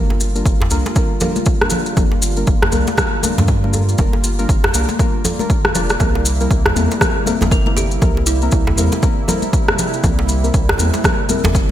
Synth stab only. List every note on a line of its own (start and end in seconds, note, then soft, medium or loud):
0.00 0.10 G3 medium
0.00 0.10 A#3 medium
0.00 0.10 D4 medium
0.00 0.10 F4 medium
0.00 0.10 A#4 loud
0.35 0.46 G3 medium
0.35 0.46 A#3 medium
0.35 0.46 D4 medium
0.35 0.46 F4 medium
0.35 0.46 A#4 loud
0.71 0.86 G3 medium
0.71 0.86 A#3 medium
0.71 0.86 D4 medium
0.71 0.86 F4 medium
0.71 0.86 A#4 loud
0.96 1.11 G3 medium
0.96 1.11 A#3 medium
0.96 1.11 D4 medium
0.96 1.11 F4 medium
0.96 1.11 A#4 loud
1.21 1.36 G3 medium
1.21 1.36 A#3 medium
1.21 1.36 D4 medium
1.21 1.36 F4 medium
1.21 1.36 A#4 loud
1.61 1.81 G3 medium
1.61 1.81 A#3 medium
1.61 1.81 D4 medium
1.61 1.81 F4 medium
1.61 1.81 A#4 medium
1.97 2.12 G3 medium
1.97 2.12 A#3 medium
1.97 2.12 D4 medium
1.97 2.12 F4 medium
1.97 2.12 A#4 loud
2.37 2.48 G3 medium
2.37 2.48 A#3 medium
2.37 2.48 D4 medium
2.37 2.48 F4 medium
2.37 2.48 A#4 loud
2.73 2.88 G3 medium
2.73 2.88 A#3 medium
2.73 2.88 D4 medium
2.73 2.88 F4 medium
2.73 2.88 A#4 loud
2.98 3.13 G3 medium
2.98 3.13 A#3 medium
2.98 3.13 D4 medium
2.98 3.13 F4 medium
2.98 3.13 A#4 loud
3.23 3.38 G3 medium
3.23 3.38 A#3 medium
3.23 3.38 D4 medium
3.23 3.38 F4 medium
3.23 3.38 A#4 loud
3.63 3.83 G3 medium
3.63 3.83 A#3 medium
3.63 3.83 D4 medium
3.63 3.83 F4 medium
3.63 3.83 A#4 medium
3.99 4.14 G3 medium
3.99 4.14 A#3 medium
3.99 4.14 D4 medium
3.99 4.14 F4 medium
3.99 4.14 A#4 loud
4.39 4.49 G3 medium
4.39 4.49 A#3 medium
4.39 4.49 D4 medium
4.39 4.49 F4 medium
4.39 4.49 A#4 loud
4.74 4.89 G3 medium
4.74 4.89 A#3 medium
4.74 4.89 D4 medium
4.74 4.89 F4 medium
4.74 4.89 A#4 loud
4.99 5.15 G3 medium
4.99 5.15 A#3 medium
4.99 5.15 D4 medium
4.99 5.15 F4 medium
4.99 5.15 A#4 loud
5.40 5.50 G3 medium
5.40 5.50 A#3 medium
5.40 5.50 D4 medium
5.40 5.50 F4 medium
5.40 5.50 A#4 medium
5.75 5.90 G3 medium
5.75 5.90 A#3 medium
5.75 5.90 D4 medium
5.75 5.90 F4 medium
5.75 5.90 D5 medium
6.00 6.15 G3 medium
6.00 6.15 A#3 medium
6.00 6.15 C4 medium
6.00 6.15 E4 medium
6.00 6.15 A#4 loud
6.41 6.51 G3 medium
6.41 6.51 A#3 medium
6.41 6.51 C4 medium
6.41 6.51 E4 medium
6.41 6.51 A#4 loud
6.76 6.91 G3 medium
6.76 6.91 A#3 medium
6.76 6.91 C4 medium
6.76 6.91 E4 medium
6.76 6.91 A#4 loud
7.01 7.16 G3 medium
7.01 7.16 A#3 medium
7.01 7.16 C4 medium
7.01 7.16 E4 medium
7.01 7.16 A#4 loud
7.26 7.42 G3 loud
7.26 7.41 A#3 medium
7.26 7.42 C4 medium
7.26 7.42 E4 medium
7.26 7.41 A#4 loud
7.67 7.86 G3 medium
7.67 7.86 A#3 medium
7.67 7.86 C4 medium
7.67 7.86 E4 medium
7.67 7.86 A#4 medium
8.02 8.17 G3 medium
8.02 8.17 A#3 medium
8.02 8.17 C4 medium
8.02 8.17 E4 medium
8.02 8.17 A#4 loud
8.42 8.53 G3 medium
8.42 8.53 A#3 medium
8.42 8.53 C4 medium
8.42 8.53 E4 medium
8.42 8.53 A#4 loud
8.78 8.93 G3 loud
8.78 8.93 A#3 medium
8.78 8.93 C4 medium
8.78 8.93 E4 medium
8.78 8.93 A#4 loud
9.03 9.18 G3 medium
9.03 9.18 A#3 medium
9.03 9.18 C4 medium
9.03 9.18 E4 medium
9.03 9.18 A#4 loud
9.28 9.43 G3 medium
9.28 9.43 A#3 medium
9.28 9.43 C4 medium
9.28 9.43 E4 medium
9.28 9.43 A#4 loud
9.68 9.88 G3 medium
9.68 9.88 A#3 medium
9.68 9.88 C4 medium
9.68 9.88 E4 medium
9.68 9.88 A#4 medium
10.04 10.19 G3 medium
10.04 10.19 A#3 medium
10.04 10.19 C4 medium
10.04 10.19 E4 medium
10.04 10.19 A#4 loud
10.44 10.54 G3 medium
10.44 10.54 A#3 medium
10.44 10.54 C4 medium
10.44 10.54 E4 medium
10.44 10.54 A#4 loud
10.79 10.94 G3 medium
10.79 10.94 A#3 medium
10.79 10.94 C4 medium
10.79 10.94 E4 medium
10.79 10.94 A#4 loud
11.05 11.20 G3 medium
11.05 11.20 A#3 medium
11.05 11.20 C4 medium
11.05 11.20 E4 medium
11.05 11.20 A#4 loud
11.30 11.45 G3 loud
11.30 11.45 A#3 medium
11.30 11.45 C4 medium
11.30 11.45 E4 medium
11.30 11.45 A#4 loud